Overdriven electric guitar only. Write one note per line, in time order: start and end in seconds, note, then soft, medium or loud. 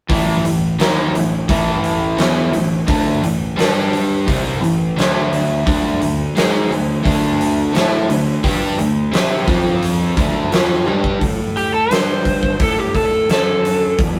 0.10 0.44 A2 medium
0.10 0.44 E3 loud
0.10 0.44 A3 loud
0.45 0.73 A2 soft
0.45 0.73 E3 medium
0.79 1.13 D#3 medium
0.79 1.14 A#3 medium
0.79 1.14 D#4 loud
1.14 1.42 A2 medium
1.14 1.43 E3 medium
1.49 2.17 A2 medium
1.49 2.17 E3 medium
1.49 2.18 A3 medium
2.18 2.52 E3 medium
2.18 2.52 B3 loud
2.18 2.53 E4 medium
2.53 2.81 A2 medium
2.53 2.81 E3 medium
2.87 3.21 D3 loud
2.87 3.21 A3 medium
2.87 3.22 D4 medium
3.22 3.50 A2 medium
3.22 3.51 E3 medium
3.56 4.26 G3 loud
3.56 4.26 D4 loud
3.56 4.27 G4 loud
4.27 4.61 C3 medium
4.27 4.61 G3 medium
4.27 4.61 C4 medium
4.62 4.90 A2 medium
4.62 4.90 E3 medium
4.97 5.64 D3 loud
4.97 5.65 A3 loud
4.97 5.65 D4 loud
5.65 6.00 D3 medium
5.65 6.00 A3 loud
5.65 6.00 D4 loud
6.01 6.29 D3 medium
6.01 6.29 A3 medium
6.35 6.69 G#3 medium
6.35 6.70 D#4 loud
6.35 6.70 G#4 loud
6.70 6.98 D3 medium
6.70 6.98 A3 medium
7.03 7.73 D3 medium
7.03 7.72 A3 medium
7.03 7.73 D4 medium
7.73 8.08 A3 medium
7.73 8.08 E4 medium
7.73 8.08 A4 loud
8.09 8.37 D3 medium
8.09 8.37 A3 medium
8.44 8.77 G3 medium
8.44 8.78 D4 loud
8.44 8.78 G4 loud
8.78 9.06 D3 medium
8.78 9.06 A3 medium
9.12 9.47 C4 medium
9.12 9.47 G4 loud
9.12 9.48 C5 loud
9.47 10.16 F3 loud
9.47 10.16 C4 loud
9.47 10.17 F4 loud
10.17 10.51 D3 medium
10.17 10.51 A3 medium
10.17 10.51 D4 loud
10.52 10.86 F3 loud
10.52 10.86 C4 medium
10.52 10.86 F4 loud
10.86 11.20 G3 medium
10.86 11.20 D4 medium
10.86 11.21 G4 medium